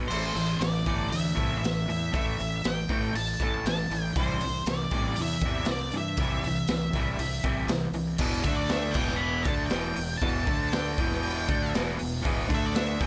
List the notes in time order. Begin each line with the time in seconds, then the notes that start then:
0.08 A1 A2 E3 A3 C5, crash
0.35 A1 A2 E3, open hi-hat
0.59 A1 A2 E3 D5, snare, open hi-hat
0.86 G1 A2 E3 A3, kick, open hi-hat
1.10 D2 A2 E3 E5, open hi-hat
1.35 C2 A2 E3 A3, kick, open hi-hat
1.58 A1 E5
1.64 A2 E3, snare, open hi-hat
1.87 E2 A2 E3, open hi-hat
2.12 A1 A2 E3 A3 E5, kick, open hi-hat
2.39 A1 A2 E3, open hi-hat
2.64 A1 A2 E3 G5, snare, open hi-hat
2.89 A1 A2 E3 A3, kick, open hi-hat
3.15 A1 A2 E3 A5, open hi-hat
3.40 A1 A2 E3 A3 A5, kick, open hi-hat
3.65 A1 A2 E3 A5, snare, open hi-hat
3.90 A1 A2 E3, open hi-hat
4.16 C2 C3 C5, kick, open hi-hat
4.20 E3 G3
4.40 C2, open hi-hat
4.44 C3 E3
4.65 C2 C3 E3 D5, snare, open hi-hat
4.91 A1 C3 E3 G3, kick, open hi-hat
5.16 E2 C3, open hi-hat
5.20 E3 E5
5.41 E2, kick, open hi-hat
5.45 C3 E3 G3
5.65 C2 C3 E3, snare, open hi-hat
5.72 D5
5.92 G2 C3 E3, open hi-hat
5.97 E5
6.17 C2 C3 E3, kick, open hi-hat
6.21 G3
6.43 C2 C3 E3, open hi-hat
6.68 C2 C3 E3, snare, open hi-hat
6.93 C2 C3 E3 G3, kick, open hi-hat
7.18 C2 C3 E3, open hi-hat
7.44 C2 C3 E3 G3, kick, open hi-hat
7.67 C2 C3 E3, snare, open hi-hat
7.92 C2 C3 E3, open hi-hat
8.18 E1 E2 B2 E3, kick, crash
8.43 D2 D3 A3 E5, kick, open hi-hat
8.48 D4
8.56 D5
8.69 E5, snare, open hi-hat
8.91 E1 E2 B2 G5, kick, crash
8.96 E3
9.08 snare
9.16 B5
9.43 D2 A5, kick, open hi-hat
9.48 D3 A3 D4
9.66 G5, open hi-hat
9.71 E1 E2 B2 E3, snare
9.96 E1 E2 B2, open hi-hat
10.18 A5, open hi-hat
10.22 E1 E2 B2 E3, kick
10.47 D2 D3 A3 D4, kick, open hi-hat
10.72 G5, snare, open hi-hat
10.98 E1 E2 B2 E3, kick, open hi-hat
11.11 snare
11.23 open hi-hat
11.48 D2 D3 A3 D4, kick, open hi-hat
11.74 E1 E2 B2 E3, snare, open hi-hat
11.99 E1 E2 B2, open hi-hat
12.23 E1 E2 B2 E3, kick, open hi-hat
12.49 D2 D3 A3 D4, kick, open hi-hat
12.55 E5
12.66 D5
12.75 E5, snare, open hi-hat
13.00 E1 E2 B2 E3 G5, kick, open hi-hat